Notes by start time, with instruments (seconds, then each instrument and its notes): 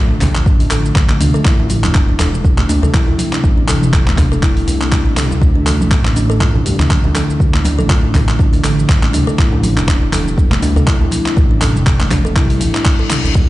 Already playing: detuned saw bass A1, ambient pad D3 F3 A3 F4
0.21 kick, clap, open hi-hat, mid tom, muted conga, djembe slap, high conga, djembe bass, low conga, shaker
0.35 kalimba D4, clap, djembe tone, shaker
0.46 kalimba D4, kick, shaker
0.60 kalimba D4, open hi-hat, muted conga, djembe tone
0.71 detuned saw bass A1, kalimba A4, clap, open hi-hat, shaker
0.85 shaker
0.95 detuned saw bass A1, kick, clap, muted conga, djembe tone, shaker
1.09 detuned saw bass A1, kalimba A3, clap
1.20 detuned saw bass D2, kalimba D4, open hi-hat, mid tom, djembe tone, shaker
1.34 kalimba A4, muted conga, shaker
1.45 detuned saw bass A1, ambient pad C3 G3 E4, kalimba E4, kick, clap, shaker
1.60 djembe tone
1.69 open hi-hat, muted conga, high conga, shaker
1.83 detuned saw bass E1, kalimba D4, clap, high conga, djembe tone, shaker
1.95 kalimba D4, kick, clap, shaker
2.09 kalimba D4
2.19 kalimba A4, clap, open hi-hat, muted conga, djembe tone, high conga, shaker
2.34 shaker
2.44 kick, djembe tone, shaker
2.58 kalimba A3, clap, muted conga, low conga
2.69 detuned saw bass D2, kalimba D4, open hi-hat, djembe slap, shaker
2.82 kalimba A4, mid tom, djembe tone, djembe bass, shaker
2.94 kalimba E4, kick, clap, muted conga, high conga, shaker
3.08 djembe tone, low conga
3.18 open hi-hat, djembe slap, high conga, shaker
3.32 kalimba D4, clap, muted conga, shaker
3.44 detuned saw bass A1, kalimba D4, kick, djembe tone, shaker
3.58 kalimba D4
3.68 kalimba A4, clap, open hi-hat, muted conga, djembe slap, djembe tone, high conga, shaker
3.82 detuned saw bass E1, high conga, shaker
3.93 kick, clap, shaker
4.07 kalimba A3, clap, djembe tone
4.17 kalimba D4, kick, clap, open hi-hat, mid tom, muted conga, djembe slap, high conga, djembe bass, low conga, shaker
4.32 kalimba A4, djembe tone, shaker
4.43 kalimba E4, kick, clap, shaker
4.56 open hi-hat, muted conga
4.67 detuned saw bass C2, open hi-hat, djembe tone, shaker
4.81 kalimba D4, clap, shaker
4.92 kalimba D4, kick, clap, muted conga, djembe tone, shaker
5.06 detuned saw bass A1, kalimba D4
5.16 detuned saw bass C2, kalimba A4, clap, open hi-hat, mid tom, shaker
5.31 muted conga, djembe tone, shaker
5.41 detuned saw bass D2, ambient pad D3 F3, kalimba D4, kick, djembe tone, shaker
5.56 kalimba D4
5.66 kalimba A4, clap, open hi-hat, muted conga, high conga, shaker
5.80 detuned saw bass A1, high conga, djembe tone, shaker
5.91 kick, clap, shaker
6.05 kalimba A3, clap, djembe tone
6.16 kalimba D4, open hi-hat, muted conga, high conga, shaker
6.30 kalimba A4, shaker
6.41 kalimba F4, kick, clap, djembe tone, shaker
6.55 muted conga, low conga
6.66 detuned saw bass G2, open hi-hat, djembe slap, djembe tone, shaker
6.79 kalimba D4, clap, mid tom, djembe bass, shaker
6.90 kalimba D4, kick, clap, muted conga, high conga, shaker
7.04 kalimba D4, djembe tone, low conga
7.15 kalimba A4, clap, open hi-hat, djembe slap, high conga, shaker
7.30 muted conga, djembe tone, shaker
7.40 detuned saw bass D2, ambient pad G3, kick, shaker
7.54 kalimba A3, clap
7.65 kalimba D4, open hi-hat, muted conga, djembe slap, high conga, djembe tone, shaker
7.79 detuned saw bass A1, kalimba A4, high conga, shaker
7.89 kalimba F4, kick, clap, djembe tone, shaker
8.15 kick, clap, open hi-hat, mid tom, muted conga, djembe slap, high conga, djembe bass, low conga, shaker
8.28 kalimba D4, clap, djembe tone, shaker
8.39 kalimba D4, kick, shaker
8.53 kalimba D4, open hi-hat, muted conga, djembe tone
8.64 detuned saw bass A1, kalimba A4, clap, open hi-hat, shaker
8.79 shaker
8.89 detuned saw bass A1, kick, clap, djembe tone, shaker
9.02 detuned saw bass A1, kalimba A3, clap
9.13 detuned saw bass D2, kalimba D4, open hi-hat, mid tom, djembe tone, shaker
9.27 kalimba A4, muted conga, shaker
9.38 detuned saw bass A1, ambient pad C3 A3 E4, kalimba E4, kick, clap, shaker
9.52 djembe tone
9.63 open hi-hat, muted conga, high conga, shaker
9.77 detuned saw bass E1, kalimba D4, clap, djembe tone, high conga, shaker
9.88 kalimba D4, kick, clap, shaker
10.02 kalimba D4
10.12 kalimba A4, clap, open hi-hat, muted conga, high conga, djembe tone, shaker
10.28 shaker
10.38 kick, djembe tone, shaker
10.51 kalimba A3, clap, muted conga, low conga
10.62 detuned saw bass D2, kalimba D4, open hi-hat, djembe slap, shaker
10.76 kalimba A4, mid tom, djembe tone, djembe bass, shaker
10.87 kalimba E4, kick, clap, muted conga, high conga, shaker
11.01 djembe tone, low conga
11.11 open hi-hat, djembe slap, high conga, shaker
11.25 kalimba D4, clap, muted conga, shaker
11.36 detuned saw bass A1, kalimba D4, ambient pad D4, kick, djembe tone, shaker
11.51 kalimba D4
11.61 kalimba A4, clap, open hi-hat, muted conga, djembe slap, djembe tone, high conga, shaker
11.75 detuned saw bass E1, high conga, shaker
11.86 kick, clap, shaker
12.00 kalimba A3, clap, djembe tone
12.10 kalimba D4, kick, clap, open hi-hat, mid tom, muted conga, djembe slap, high conga, low conga, djembe bass, shaker
12.25 kalimba A4, djembe tone, shaker
12.36 detuned saw bass C2, kalimba E4, kick, clap, mid tom, reverse cymbal, shaker
12.50 open hi-hat, muted conga, high conga
12.60 detuned saw bass A1, open hi-hat, djembe tone, shaker
12.74 kalimba E4, clap, shaker
12.85 kalimba D4, kick, clap, muted conga, djembe tone, shaker
12.99 kalimba A4
13.10 kalimba D4, clap, open hi-hat, mid tom, shaker
13.24 detuned saw bass A1, muted conga, djembe tone, shaker
13.35 detuned saw bass D2, kalimba D4, kick, crash, djembe tone, shaker